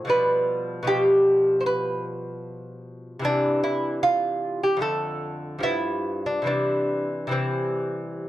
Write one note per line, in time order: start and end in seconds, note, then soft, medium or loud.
0.05 0.81 B2 medium
0.05 0.83 F3 medium
0.05 0.85 G3 soft
0.10 0.85 B4 loud
0.83 3.18 B2 medium
0.83 3.19 F3 medium
0.87 3.20 G3 medium
0.87 1.57 G4 loud
1.61 1.66 C5 medium
1.66 2.05 B4 loud
3.19 4.77 C3 medium
3.19 4.78 E3 medium
3.24 4.79 G3 soft
3.24 3.63 D4 loud
3.64 4.02 E4 medium
4.03 4.61 F4 loud
4.63 4.81 G4 medium
4.77 5.59 F2 medium
4.77 5.60 D3 medium
4.81 5.61 A3 medium
4.81 5.60 A4 loud
5.59 6.42 G2 medium
5.59 6.43 F3 soft
5.63 6.44 B3 medium
5.63 6.23 E4 loud
6.26 6.46 D4 medium
6.42 7.26 C3 medium
6.42 7.28 E3 soft
6.42 7.29 G3 soft
6.47 7.29 D4 medium
7.27 8.29 C3 medium
7.27 8.29 E3 medium
7.31 8.29 G3 medium
7.31 8.29 C4 medium